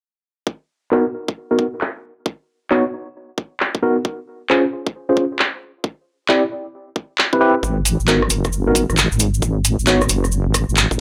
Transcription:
0.47 kick
0.91 tine electric piano B3 D#4 F#4 A#4, clap
1.28 kick
1.51 tine electric piano B3 D#4 F#4 A#4
1.59 kick
1.81 clap
2.26 kick
2.71 tine electric piano B3 D#4 F#4 C#5, clap
3.38 kick
3.60 clap
3.75 kick
3.83 tine electric piano B3 D#4 F#4 A#4
4.05 kick
4.50 tine electric piano C#4 F4 G#4 C5, clap
4.87 kick
5.09 tine electric piano C#4 F4 G#4 C5
5.17 kick
5.39 clap
5.84 kick
6.29 tine electric piano C4 E4 G4 D5, clap
6.96 kick
7.18 clap
7.33 tine electric piano C4 E4 G4 B4, kick
7.41 tine electric piano C4 E4 G4 B4
7.63 wobble bass G#1, kick, cabasa
7.85 open hi-hat, cabasa
8.00 wobble bass G#1, cabasa
8.08 tine electric piano B3 D#4 F#4 A#4, clap, cabasa
8.22 cross-stick
8.30 wobble bass F#1, open hi-hat, cabasa
8.45 kick, cross-stick, cabasa
8.53 cabasa
8.67 wobble bass G#1, tine electric piano B3 D#4 F#4 A#4
8.75 kick, open hi-hat, cabasa
8.90 wobble bass G#1, cross-stick, cabasa
8.97 clap, cabasa
9.12 wobble bass G#1, cabasa
9.19 open hi-hat, cabasa
9.34 cabasa
9.42 wobble bass G#1, kick, cabasa
9.65 open hi-hat, cabasa
9.79 wobble bass G#1, cabasa
9.87 tine electric piano B3 D#4 F#4 C#5, clap, cabasa
10.01 cross-stick, cabasa
10.09 wobble bass F#1, open hi-hat, cabasa
10.24 cross-stick, cabasa
10.32 cabasa
10.46 wobble bass G#1
10.54 kick, cross-stick, open hi-hat, cabasa
10.69 wobble bass G#1, cabasa
10.77 clap, cabasa
10.91 wobble bass G#1, kick, cabasa

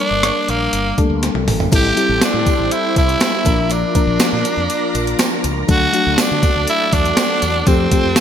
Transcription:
Already playing: fm electric piano G3 A#3 D4 A#4
0.00 tenor saxophone D4
0.11 fretless electric bass G1
0.23 cross-stick, closed hi-hat
0.49 fretless electric bass A#1, tenor saxophone A#3, closed hi-hat
0.73 fretless electric bass G1, closed hi-hat
0.98 fm electric piano G3 A3 D4 A4, kick, closed hi-hat
1.04 fm electric piano A#3
1.10 fretless electric bass D2
1.23 snare, closed hi-hat
1.35 fretless electric bass C2, high tom
1.47 fretless electric bass G#1, mid tom, open hi-hat
1.60 floor tom
1.72 fretless electric bass A1, fm electric piano G3 C4 E4 A4, string machine E4 A4 C5 G5, tenor saxophone G4, kick, closed hi-hat, crash, tambourine
1.96 fm electric piano G3 C4 E4 G4, closed hi-hat
2.09 fretless electric bass A1
2.22 tenor saxophone D4, snare, closed hi-hat, tambourine
2.34 fretless electric bass A2
2.46 kick, closed hi-hat, tambourine
2.59 fretless electric bass A1
2.71 tenor saxophone E4, closed hi-hat
2.96 fretless electric bass C2, tenor saxophone E4, kick, closed hi-hat, tambourine
3.09 closed hi-hat
3.20 snare, closed hi-hat, tambourine
3.45 fretless electric bass A#1, fm electric piano F3 A#3 D4 A#4, string machine F4 A#4 D5 A#5, kick, closed hi-hat, tambourine
3.70 tenor saxophone D4, closed hi-hat, tambourine
3.95 fm electric piano F3 A#3 D4 A#4, kick, closed hi-hat, tambourine
4.07 fretless electric bass A#1
4.20 muted fretless electric bass stroke, snare, closed hi-hat, tambourine
4.33 fretless electric bass A#2
4.45 closed hi-hat, tambourine
4.57 fretless electric bass F2
4.70 closed hi-hat, tambourine
4.95 fretless electric bass A#1, closed hi-hat, tambourine
5.07 closed hi-hat
5.19 snare, closed hi-hat, tambourine
5.44 fretless electric bass C#2, closed hi-hat, tambourine
5.68 fretless electric bass D2, fm electric piano F#3 A3 D4 A4, string machine F#4 A4 D5 A5, tenor saxophone F#4, kick, closed hi-hat, tambourine
5.93 fm electric piano F#3 A3 D4 F#4, closed hi-hat
6.07 fretless electric bass D2
6.18 tenor saxophone D4, snare, closed hi-hat, tambourine
6.31 fretless electric bass D3
6.43 kick, closed hi-hat, tambourine
6.56 fretless electric bass D2
6.67 tenor saxophone E4, closed hi-hat, tambourine
6.93 fretless electric bass E2, tenor saxophone D4, kick, closed hi-hat, tambourine
7.05 closed hi-hat
7.17 snare, closed hi-hat, tambourine
7.42 fretless electric bass E2, closed hi-hat, tambourine
7.66 fretless electric bass F2, fm electric piano F3 A3 C4 G4, tenor saxophone C4, string machine F4 C5 G5, kick, closed hi-hat, tambourine
7.91 fm electric piano F3 A3 C4 G4, kick, closed hi-hat, tambourine
8.04 fretless electric bass F2
8.16 muted fretless electric bass stroke, snare, closed hi-hat, tambourine

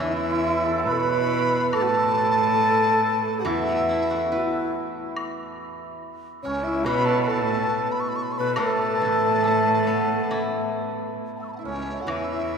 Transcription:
Already playing: hammered dulcimer A3 C#4
0.00 cello E2, guzheng E3, xiao E4, hammered dulcimer E4, dizi E5
0.07 hammered dulcimer E4
0.16 hammered dulcimer E4
0.23 hammered dulcimer E4
0.30 hammered dulcimer E4
0.38 hammered dulcimer E4
0.46 hammered dulcimer E4
0.51 hammered dulcimer E4
0.65 hammered dulcimer A4
0.78 hammered dulcimer C#5
0.86 cello B2, xiao B4, hammered dulcimer B4, dizi B5
0.93 xiao A4
1.00 xiao B4
1.53 hammered dulcimer B4
1.73 cello A2, hammered dulcimer A4, xiao A4, dizi A5, high woodblock
1.82 xiao F#4
1.89 xiao A4
3.39 hammered dulcimer F#4, dizi F#5
3.45 cello E2, guzheng E3, hammered dulcimer E4, xiao E4, dizi E5, high woodblock
3.69 guzheng B3
3.89 guzheng E4
4.10 guzheng F#4
4.31 xiao E4, hammered dulcimer E4, guzheng B4
4.38 xiao F#4
4.43 xiao E4
5.16 high woodblock
6.43 cello C#2, xiao C#4, hammered dulcimer C#4, dizi C#5
6.63 xiao E4, dizi E5
6.67 hammered dulcimer E4
6.84 cello B2, guzheng B2, xiao B4, dizi B5, high woodblock
6.88 hammered dulcimer B4
7.05 hammered dulcimer A4, dizi A5
7.23 dizi A5 B5
7.28 cello A2, xiao A4, hammered dulcimer A4
7.92 dizi B5
8.00 dizi C#6
8.09 dizi B5
8.16 dizi C#6
8.23 dizi B5
8.32 dizi C#6
8.38 cello B2, xiao B4, hammered dulcimer B4, dizi B5
8.55 guzheng A2, cello A2, xiao A4, hammered dulcimer A4, dizi A5, high woodblock
9.02 guzheng E3
9.43 guzheng A3, low woodblock
9.87 guzheng B3
10.31 guzheng E4, high woodblock
11.36 dizi F#5 A5
11.42 dizi C#6 E6
11.48 dizi B5
11.53 dizi F#5 A5
11.59 hammered dulcimer E4, dizi E5
11.63 cello C#2, xiao C#4, hammered dulcimer C#4, dizi C#5
11.93 xiao E5
11.99 xiao A4 B4, dizi F#5
12.05 cello E2, guzheng E3, xiao E4 F#4, high woodblock
12.10 hammered dulcimer E4, dizi E5
12.17 hammered dulcimer E4
12.24 hammered dulcimer E4
12.32 hammered dulcimer E4
12.40 hammered dulcimer E4
12.47 hammered dulcimer E4
12.54 hammered dulcimer E4

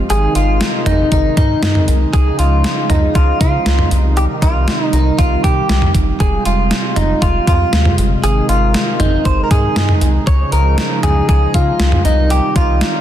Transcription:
Already playing: analog synth pad G#3
0.10 analog synth bass G#1, analog synth pad C3 D#3 D#4, clean electric guitar G#4, closed hi-hat
0.35 analog synth bass G#1, clean electric guitar F4, closed hi-hat
0.61 snare, closed hi-hat
0.86 analog synth bass G#1, clean electric guitar D#4, closed hi-hat, mid tom
1.12 analog synth bass G#1, clean electric guitar D#4, kick, closed hi-hat
1.37 analog synth bass G#2, clean electric guitar D#4, kick, closed hi-hat
1.63 analog synth bass G2, snare, closed hi-hat
1.75 mid tom
1.88 analog synth bass C2, closed hi-hat
2.13 analog synth bass C#2, analog synth pad C#3 F3 D#4, clean electric guitar G#4, kick, closed hi-hat
2.39 analog synth bass C#2, clean electric guitar F4, closed hi-hat
2.64 snare, closed hi-hat
2.90 analog synth bass C#2, clean electric guitar D#4, closed hi-hat, mid tom
3.15 analog synth bass C#2, clean electric guitar F4, kick, closed hi-hat
3.41 analog synth bass C#3, clean electric guitar F4, kick, closed hi-hat
3.66 analog synth bass C#2, snare, closed hi-hat
3.79 mid tom
3.91 analog synth bass C2, analog synth pad C3 D#3 G3, closed hi-hat
4.17 clean electric guitar G4, closed hi-hat
4.42 analog synth bass C2, clean electric guitar F4, kick, closed hi-hat
4.68 snare, closed hi-hat
4.84 clean electric guitar D#4
4.93 analog synth bass C2, clean electric guitar D#4, closed hi-hat
5.18 analog synth bass C2, clean electric guitar F4, kick, closed hi-hat
5.44 analog synth bass C3, clean electric guitar G4, kick, closed hi-hat
5.69 analog synth bass C2, snare, closed hi-hat
5.82 mid tom
5.95 analog synth bass G1, kick, closed hi-hat
6.20 analog synth bass F1, analog synth pad C3 G#3 F4, clean electric guitar G#4, kick, closed hi-hat
6.45 analog synth bass F1, clean electric guitar F4, closed hi-hat
6.71 snare, closed hi-hat
6.96 analog synth bass F1, clean electric guitar D#4, closed hi-hat, mid tom
7.22 analog synth bass F1, clean electric guitar F4, kick, closed hi-hat
7.47 analog synth bass F2, clean electric guitar F4, kick, closed hi-hat
7.73 analog synth bass D#2, snare, closed hi-hat
7.85 mid tom
7.98 analog synth bass G1, closed hi-hat
8.24 analog synth bass G#1, analog synth pad D#3 D#4, clean electric guitar G#4, closed hi-hat
8.49 analog synth bass G#1, clean electric guitar F4, closed hi-hat
8.74 snare, closed hi-hat
9.00 analog synth bass G#1, clean electric guitar D#4, closed hi-hat, mid tom
9.25 analog synth bass G#1, clean electric guitar C5, kick, closed hi-hat
9.44 clean electric guitar A#4
9.51 analog synth bass G#2, clean electric guitar G#4, kick, closed hi-hat
9.76 analog synth bass G2, snare, closed hi-hat
9.89 mid tom
10.01 analog synth bass C2, closed hi-hat
10.27 analog synth bass C#2, analog synth pad C#3 F3, clean electric guitar C#5, kick, closed hi-hat
10.52 analog synth bass C#2, clean electric guitar A#4, closed hi-hat
10.78 snare, closed hi-hat
11.03 analog synth bass C#2, clean electric guitar G#4, closed hi-hat, mid tom
11.29 analog synth bass C#2, clean electric guitar G#4, kick, closed hi-hat
11.54 analog synth bass C#3, clean electric guitar F4, kick, closed hi-hat
11.80 analog synth bass C#2, snare, closed hi-hat
11.92 mid tom
12.05 analog synth bass C2, analog synth pad C3 D#3 G3 D#4, clean electric guitar D#4, closed hi-hat
12.30 clean electric guitar G4, closed hi-hat
12.56 analog synth bass C2, clean electric guitar F4, kick, closed hi-hat
12.81 snare, closed hi-hat

